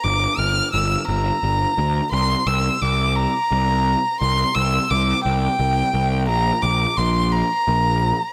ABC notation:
X:1
M:6/8
L:1/8
Q:3/8=58
K:Cmix
V:1 name="Violin"
d' f' e' b3 | c' e' d' b3 | c' e' d' g3 | b d' c' b3 |]
V:2 name="Picked electric bass" clef=bass
G,,, G,,, G,,, G,,, G,,, D,, | C,, C,, C,,2 C,,2 | C,, C,, C,, C,, C,, C,, | B,,, B,,, B,,,2 B,,,2 |]